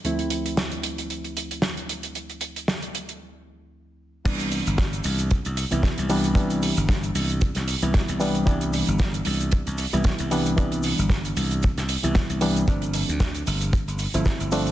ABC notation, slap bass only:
X:1
M:4/4
L:1/16
Q:"Swing 16ths" 1/4=114
K:C
V:1 name="Slap bass" clef=bass
z16 | z16 | C,,3 G,,,3 C,,3 C,, z C,, z C,,3 | C,,3 G,,,3 C,,3 C,, z C,, z C,,3 |
C,,3 G,,,3 C,,3 C,, z C,, z C,,3 | C,,3 G,,,3 C,,3 C,, z C,, z C,,3 | G,,,3 D,,3 G,,,3 G,,, z G,,, z G,,,3 |]